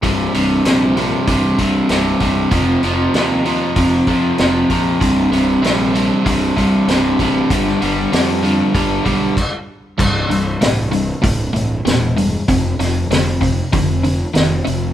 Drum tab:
CC |----------------|----------------|----------------|------------x---|
HH |o-o-o-o-o-o-o-o-|o-o-o-o-o-o-o-o-|o-o-o-o-o-o-o-o-|o-o-o-o-o-o-----|
SD |----o-------o---|----o-------o---|----o-------o---|-o--o-----------|
BD |o-------o-o---o-|o-------o-o---o-|o-------o-o---o-|o-------o-o-o---|

CC |x---------------|----------------|
HH |--o-o-o-o-o-o-o-|o-o-o-o-o-o-o-o-|
SD |----o-------o---|--o-o-------o---|
BD |o-------o-------|o-----o-o-------|